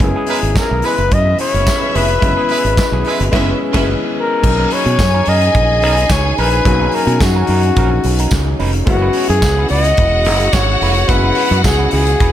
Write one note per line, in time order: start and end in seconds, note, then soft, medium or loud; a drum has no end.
0.00 0.11 F#1 loud
0.00 4.26 C#3 medium
0.00 4.26 F#3 medium
0.00 2.18 G#3 medium
0.00 4.26 G#3 medium
0.00 4.26 B3 medium
0.00 2.18 B3 medium
0.00 2.19 C#4 medium
0.00 4.26 E4 medium
0.00 2.19 E4 medium
0.00 0.59 G#4 medium
0.00 muted clean electric guitar stroke soft
0.00 kick loud
0.00 closed hi-hat medium
0.15 0.26 B3 medium
0.15 0.27 E4 medium
0.15 0.29 G#4 medium
0.27 0.37 G#3 loud
0.27 0.41 B3 medium
0.27 0.37 E4 medium
0.27 0.42 E4 medium
0.27 0.41 A#4 medium
0.27 0.37 B4 loud
0.27 open hi-hat medium
0.42 0.53 G#1 medium
0.42 muted clean electric guitar stroke soft
0.42 closed hi-hat soft
0.56 0.65 E3 medium
0.56 0.65 C#4 medium
0.56 0.65 G#4 medium
0.56 0.87 A#4 loud
0.56 muted clean electric guitar stroke soft
0.56 kick loud
0.56 snare loud
0.56 clap medium
0.56 closed hi-hat medium
0.56 tambourine medium
0.69 0.81 B1 medium
0.69 0.82 B3 soft
0.69 0.83 E4 medium
0.69 0.83 G#4 medium
0.82 1.02 G#3 loud
0.82 1.00 B3 medium
0.82 1.02 E4 loud
0.82 0.97 E4 medium
0.82 0.96 G#4 medium
0.82 1.02 B4 loud
0.82 1.14 B4 loud
0.82 open hi-hat medium
0.97 1.09 F#1 medium
0.97 muted clean electric guitar stroke medium
0.97 closed hi-hat soft
1.10 1.33 F#2 medium
1.10 3.29 C#4 medium
1.10 3.29 B4 medium
1.10 1.40 D#5 loud
1.10 3.29 E5 loud
1.10 muted clean electric guitar stroke soft
1.10 kick loud
1.10 closed hi-hat medium
1.25 muted clean electric guitar stroke soft
1.39 1.56 B3 medium
1.39 1.54 E4 medium
1.39 1.53 G#4 medium
1.39 1.97 C#5 loud
1.39 open hi-hat medium
1.54 1.64 F#1 medium
1.54 muted clean electric guitar stroke soft
1.54 closed hi-hat medium
1.67 kick loud
1.67 snare medium
1.67 clap medium
1.67 closed hi-hat medium
1.67 tambourine loud
1.82 muted clean electric guitar stroke soft
1.94 2.16 F1 medium
1.94 2.11 B3 medium
1.94 2.08 E4 medium
1.94 2.07 G#4 loud
1.94 3.89 B4 loud
1.94 open hi-hat medium
2.08 muted clean electric guitar stroke soft
2.08 closed hi-hat soft
2.21 2.33 F#1 loud
2.21 3.30 G#3 medium
2.21 3.31 B3 medium
2.21 3.31 C#4 medium
2.21 3.32 E4 medium
2.21 muted clean electric guitar stroke soft
2.21 kick loud
2.21 closed hi-hat medium
2.36 2.48 B3 medium
2.36 2.49 E4 medium
2.36 2.50 G#4 medium
2.49 2.59 G#3 medium
2.49 2.63 B3 medium
2.49 2.59 E4 loud
2.49 2.63 E4 medium
2.49 2.63 G#4 medium
2.49 2.59 B4 loud
2.49 open hi-hat medium
2.65 2.75 G#1 medium
2.65 closed hi-hat soft
2.77 2.87 G#3 medium
2.77 2.87 E4 medium
2.77 2.87 B4 medium
2.77 muted clean electric guitar stroke soft
2.77 kick loud
2.77 snare loud
2.77 clap medium
2.77 closed hi-hat medium
2.77 tambourine loud
2.92 3.02 B1 medium
2.92 3.04 B3 medium
2.92 3.05 E4 medium
2.92 3.05 G#4 medium
3.05 3.23 G#3 medium
3.05 3.22 B3 medium
3.05 3.23 E4 medium
3.05 3.19 E4 medium
3.05 3.18 G#4 loud
3.05 3.23 B4 loud
3.05 open hi-hat medium
3.20 3.31 F#1 loud
3.20 muted clean electric guitar stroke soft
3.20 closed hi-hat soft
3.32 3.51 G#3 loud
3.32 3.47 G#3 loud
3.32 3.52 B3 loud
3.32 3.52 C#4 loud
3.32 3.48 E4 medium
3.32 3.52 E4 medium
3.32 3.53 E4 loud
3.32 3.53 G#4 medium
3.32 3.51 B4 loud
3.32 3.47 B4 loud
3.32 3.51 E5 loud
3.32 kick loud
3.32 snare loud
3.32 crash medium
3.73 3.93 F#1 loud
3.73 3.92 G#3 medium
3.73 3.89 G#3 medium
3.73 3.93 B3 loud
3.73 3.94 B3 loud
3.73 3.93 C#4 loud
3.73 3.94 C#4 loud
3.73 3.94 E4 loud
3.73 3.89 E4 loud
3.73 3.94 E4 loud
3.73 3.93 G#4 loud
3.73 3.93 B4 loud
3.73 3.89 B4 medium
3.73 3.93 E5 loud
3.73 kick loud
3.73 snare loud
3.73 crash medium
4.18 4.75 A#4 medium
4.42 4.65 B1 loud
4.42 12.32 C#3 medium
4.42 6.61 F#3 medium
4.42 12.32 F#3 medium
4.42 6.61 A#3 medium
4.42 8.83 C#4 medium
4.42 6.62 C#4 medium
4.42 8.83 D#4 medium
4.42 6.62 D#4 medium
4.42 8.55 G#4 loud
4.42 8.55 G#5 loud
4.42 muted clean electric guitar stroke soft
4.42 kick loud
4.42 crash loud
4.58 4.71 C#4 medium
4.58 4.71 D#4 medium
4.58 4.73 A#4 medium
4.70 4.85 C#4 medium
4.70 4.85 D#4 medium
4.70 4.85 B4 medium
4.70 5.30 C#5 loud
4.70 open hi-hat medium
4.86 4.96 B2 medium
4.86 closed hi-hat soft
4.99 5.20 F#2 loud
4.99 muted clean electric guitar stroke soft
4.99 kick loud
4.99 snare loud
4.99 clap medium
4.99 closed hi-hat medium
4.99 tambourine medium
5.13 5.26 C#4 medium
5.13 5.26 D#4 medium
5.13 5.26 A#4 medium
5.25 5.48 F#2 medium
5.25 5.44 C#4 medium
5.25 5.41 D#4 medium
5.25 5.40 A#4 loud
5.25 6.13 D#5 loud
5.25 open hi-hat medium
5.41 muted clean electric guitar stroke soft
5.41 closed hi-hat medium
5.55 5.83 A#1 medium
5.55 muted clean electric guitar stroke soft
5.55 kick loud
5.55 closed hi-hat medium
5.69 muted clean electric guitar stroke soft
5.82 6.04 B1 medium
5.82 5.99 C#4 medium
5.82 5.96 D#4 loud
5.82 5.95 A#4 medium
5.82 open hi-hat medium
5.96 muted clean electric guitar stroke soft
5.96 closed hi-hat soft
6.10 6.31 C#2 loud
6.10 6.37 C#5 loud
6.10 kick loud
6.10 snare loud
6.10 clap medium
6.10 closed hi-hat medium
6.10 tambourine loud
6.24 muted clean electric guitar stroke soft
6.37 6.59 A#1 loud
6.37 6.54 C#4 medium
6.37 6.51 D#4 medium
6.37 6.50 A#4 loud
6.37 6.96 B4 loud
6.37 open hi-hat medium
6.51 muted clean electric guitar stroke soft
6.51 closed hi-hat soft
6.64 6.87 B1 loud
6.64 8.83 F#3 medium
6.64 8.83 A#3 medium
6.64 8.84 C#4 medium
6.64 8.84 F#4 medium
6.64 muted clean electric guitar stroke soft
6.64 kick loud
6.64 closed hi-hat medium
6.80 6.92 C#4 medium
6.80 6.93 D#4 medium
6.80 6.93 A#4 medium
6.92 7.06 C#4 medium
6.92 7.07 D#4 medium
6.92 7.06 A#4 medium
6.92 7.24 A#4 medium
6.92 open hi-hat medium
7.07 7.18 B2 medium
7.07 closed hi-hat soft
7.21 7.42 F#2 loud
7.21 8.60 F#4 loud
7.21 muted clean electric guitar stroke soft
7.21 kick loud
7.21 snare loud
7.21 clap medium
7.21 closed hi-hat medium
7.21 tambourine medium
7.35 7.48 C#4 medium
7.35 7.49 D#4 medium
7.35 7.48 A#4 medium
7.47 7.70 F#2 medium
7.47 7.66 C#4 medium
7.47 7.64 D#4 loud
7.47 7.63 A#4 loud
7.47 open hi-hat medium
7.63 muted clean electric guitar stroke medium
7.63 closed hi-hat medium
7.76 7.98 A#1 medium
7.76 7.93 C#4 medium
7.76 7.91 D#4 medium
7.76 7.90 A#4 loud
7.76 kick loud
7.76 closed hi-hat medium
7.91 muted clean electric guitar stroke soft
8.04 8.26 B1 medium
8.04 muted clean electric guitar stroke soft
8.04 open hi-hat medium
8.19 8.31 C#4 medium
8.19 8.32 D#4 medium
8.19 8.32 A#4 medium
8.19 closed hi-hat soft
8.31 8.53 C#2 loud
8.31 muted clean electric guitar stroke soft
8.31 kick loud
8.31 snare loud
8.31 clap medium
8.31 closed hi-hat medium
8.31 tambourine loud
8.47 muted clean electric guitar stroke soft
8.59 8.81 F1 medium
8.59 8.76 C#4 loud
8.59 8.73 D#4 loud
8.59 8.73 B4 loud
8.59 open hi-hat medium
8.73 muted clean electric guitar stroke soft
8.73 closed hi-hat soft
8.85 9.08 F#1 loud
8.85 11.04 G#3 medium
8.85 12.32 G#3 medium
8.85 11.05 B3 medium
8.85 11.05 C#4 medium
8.85 11.07 E4 medium
8.85 11.06 E4 medium
8.85 12.32 F#4 loud
8.85 9.26 F#4 loud
8.85 12.32 F#5 loud
8.85 muted clean electric guitar stroke soft
8.85 kick loud
8.85 closed hi-hat medium
9.01 9.14 E4 medium
9.01 9.15 G#4 medium
9.01 9.16 B4 medium
9.13 9.28 E4 medium
9.13 9.29 G#4 medium
9.13 9.29 C#5 medium
9.13 open hi-hat medium
9.29 9.40 F#2 loud
9.29 9.68 G#4 loud
9.29 muted clean electric guitar stroke soft
9.29 closed hi-hat soft
9.42 9.64 C#2 medium
9.42 muted clean electric guitar stroke soft
9.42 kick loud
9.42 snare loud
9.42 clap medium
9.42 closed hi-hat medium
9.42 tambourine loud
9.57 9.70 E4 soft
9.57 9.70 G#4 medium
9.57 9.70 B4 medium
9.69 9.92 C#2 medium
9.69 9.88 E4 medium
9.69 9.84 G#4 medium
9.69 10.55 D#5 loud
9.69 open hi-hat medium
9.73 9.84 B4 loud
9.84 muted clean electric guitar stroke medium
9.84 closed hi-hat medium
9.97 10.26 E1 medium
9.97 muted clean electric guitar stroke soft
9.97 kick loud
9.97 closed hi-hat medium
10.13 muted clean electric guitar stroke soft
10.25 10.47 F#1 medium
10.25 10.46 E4 loud
10.25 10.41 G#4 medium
10.25 10.39 B4 loud
10.25 open hi-hat medium
10.40 muted clean electric guitar stroke medium
10.40 closed hi-hat soft
10.53 10.75 G#1 medium
10.53 11.10 C#5 loud
10.53 kick loud
10.53 snare loud
10.53 clap medium
10.53 closed hi-hat medium
10.53 tambourine loud
10.68 muted clean electric guitar stroke medium
10.81 11.03 F1 medium
10.81 10.98 E4 medium
10.81 10.96 G#4 medium
10.81 10.95 B4 medium
10.81 open hi-hat medium
10.95 muted clean electric guitar stroke soft
10.95 closed hi-hat soft
11.07 11.30 F#1 loud
11.07 12.32 G#3 medium
11.07 12.32 B3 medium
11.07 12.32 C#4 medium
11.07 12.32 E4 medium
11.07 12.32 F#4 medium
11.07 11.63 B4 loud
11.07 muted clean electric guitar stroke soft
11.07 kick loud
11.07 closed hi-hat medium
11.23 11.35 E4 medium
11.23 11.36 G#4 medium
11.23 11.37 B4 medium
11.35 11.50 E4 medium
11.35 11.50 G#4 medium
11.35 11.49 B4 medium
11.35 open hi-hat medium
11.50 11.62 F#2 medium
11.50 muted clean electric guitar stroke medium
11.50 closed hi-hat soft
11.64 11.86 C#2 loud
11.64 11.90 G#4 medium
11.64 muted clean electric guitar stroke soft
11.64 kick loud
11.64 snare loud
11.64 clap medium
11.64 closed hi-hat medium
11.64 tambourine medium
11.78 11.91 E4 soft
11.78 11.92 G#4 medium
11.78 11.92 B4 medium
11.91 12.14 C#2 medium
11.91 12.09 E4 medium
11.91 12.32 G#4 loud
11.91 12.07 G#4 loud
11.91 12.06 B4 loud
11.91 open hi-hat medium
12.07 muted clean electric guitar stroke medium
12.07 closed hi-hat medium
12.20 12.32 E1 medium
12.20 12.32 E4 medium
12.20 12.32 G#4 medium
12.20 12.32 B4 loud
12.20 kick loud
12.20 closed hi-hat medium